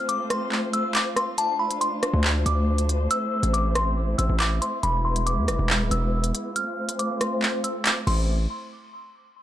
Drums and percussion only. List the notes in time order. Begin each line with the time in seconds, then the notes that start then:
0.09 closed hi-hat
0.30 cross-stick, closed hi-hat
0.52 clap
0.73 closed hi-hat
0.95 clap, closed hi-hat
1.16 cross-stick, closed hi-hat
1.38 closed hi-hat
1.71 closed hi-hat
1.81 closed hi-hat
2.03 cross-stick, closed hi-hat
2.24 clap
2.46 closed hi-hat
2.78 closed hi-hat
2.89 closed hi-hat
3.11 closed hi-hat
3.43 closed hi-hat
3.54 closed hi-hat
3.75 cross-stick, closed hi-hat
4.19 closed hi-hat
4.40 clap, closed hi-hat
4.62 closed hi-hat
4.83 closed hi-hat
5.16 closed hi-hat
5.27 closed hi-hat
5.48 cross-stick, closed hi-hat
5.70 clap
5.91 closed hi-hat
6.24 closed hi-hat
6.35 closed hi-hat
6.56 closed hi-hat
6.89 closed hi-hat
6.99 closed hi-hat
7.21 cross-stick, closed hi-hat
7.42 clap
7.64 closed hi-hat
7.86 clap, closed hi-hat
8.07 crash